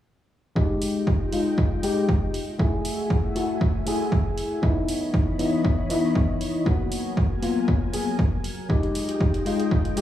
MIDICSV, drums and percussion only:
0, 0, Header, 1, 2, 480
1, 0, Start_track
1, 0, Tempo, 508475
1, 531, Time_signature, 4, 2, 24, 8
1, 9449, End_track
2, 0, Start_track
2, 0, Title_t, "Drums"
2, 531, Note_on_c, 9, 36, 103
2, 625, Note_off_c, 9, 36, 0
2, 770, Note_on_c, 9, 46, 100
2, 865, Note_off_c, 9, 46, 0
2, 1010, Note_on_c, 9, 36, 106
2, 1105, Note_off_c, 9, 36, 0
2, 1251, Note_on_c, 9, 46, 84
2, 1345, Note_off_c, 9, 46, 0
2, 1490, Note_on_c, 9, 36, 112
2, 1585, Note_off_c, 9, 36, 0
2, 1730, Note_on_c, 9, 46, 95
2, 1824, Note_off_c, 9, 46, 0
2, 1970, Note_on_c, 9, 36, 115
2, 2064, Note_off_c, 9, 36, 0
2, 2210, Note_on_c, 9, 46, 83
2, 2304, Note_off_c, 9, 46, 0
2, 2449, Note_on_c, 9, 36, 112
2, 2544, Note_off_c, 9, 36, 0
2, 2690, Note_on_c, 9, 46, 102
2, 2784, Note_off_c, 9, 46, 0
2, 2929, Note_on_c, 9, 36, 110
2, 3024, Note_off_c, 9, 36, 0
2, 3170, Note_on_c, 9, 46, 88
2, 3265, Note_off_c, 9, 46, 0
2, 3409, Note_on_c, 9, 36, 112
2, 3503, Note_off_c, 9, 36, 0
2, 3650, Note_on_c, 9, 46, 97
2, 3744, Note_off_c, 9, 46, 0
2, 3889, Note_on_c, 9, 36, 116
2, 3984, Note_off_c, 9, 36, 0
2, 4131, Note_on_c, 9, 46, 89
2, 4225, Note_off_c, 9, 46, 0
2, 4370, Note_on_c, 9, 36, 117
2, 4464, Note_off_c, 9, 36, 0
2, 4611, Note_on_c, 9, 46, 103
2, 4705, Note_off_c, 9, 46, 0
2, 4850, Note_on_c, 9, 36, 110
2, 4944, Note_off_c, 9, 36, 0
2, 5091, Note_on_c, 9, 46, 91
2, 5185, Note_off_c, 9, 46, 0
2, 5330, Note_on_c, 9, 36, 117
2, 5424, Note_off_c, 9, 36, 0
2, 5570, Note_on_c, 9, 46, 102
2, 5665, Note_off_c, 9, 46, 0
2, 5810, Note_on_c, 9, 36, 116
2, 5904, Note_off_c, 9, 36, 0
2, 6050, Note_on_c, 9, 46, 87
2, 6145, Note_off_c, 9, 46, 0
2, 6290, Note_on_c, 9, 36, 111
2, 6384, Note_off_c, 9, 36, 0
2, 6529, Note_on_c, 9, 46, 98
2, 6624, Note_off_c, 9, 46, 0
2, 6770, Note_on_c, 9, 36, 111
2, 6864, Note_off_c, 9, 36, 0
2, 7010, Note_on_c, 9, 46, 86
2, 7104, Note_off_c, 9, 46, 0
2, 7250, Note_on_c, 9, 36, 110
2, 7344, Note_off_c, 9, 36, 0
2, 7490, Note_on_c, 9, 46, 98
2, 7585, Note_off_c, 9, 46, 0
2, 7730, Note_on_c, 9, 36, 116
2, 7825, Note_off_c, 9, 36, 0
2, 7970, Note_on_c, 9, 46, 88
2, 8065, Note_off_c, 9, 46, 0
2, 8210, Note_on_c, 9, 36, 109
2, 8305, Note_off_c, 9, 36, 0
2, 8338, Note_on_c, 9, 42, 33
2, 8432, Note_off_c, 9, 42, 0
2, 8450, Note_on_c, 9, 46, 97
2, 8545, Note_off_c, 9, 46, 0
2, 8579, Note_on_c, 9, 42, 58
2, 8673, Note_off_c, 9, 42, 0
2, 8690, Note_on_c, 9, 36, 107
2, 8784, Note_off_c, 9, 36, 0
2, 8819, Note_on_c, 9, 42, 47
2, 8913, Note_off_c, 9, 42, 0
2, 8931, Note_on_c, 9, 46, 82
2, 9026, Note_off_c, 9, 46, 0
2, 9059, Note_on_c, 9, 42, 59
2, 9153, Note_off_c, 9, 42, 0
2, 9170, Note_on_c, 9, 36, 108
2, 9264, Note_off_c, 9, 36, 0
2, 9299, Note_on_c, 9, 42, 45
2, 9394, Note_off_c, 9, 42, 0
2, 9411, Note_on_c, 9, 46, 99
2, 9449, Note_off_c, 9, 46, 0
2, 9449, End_track
0, 0, End_of_file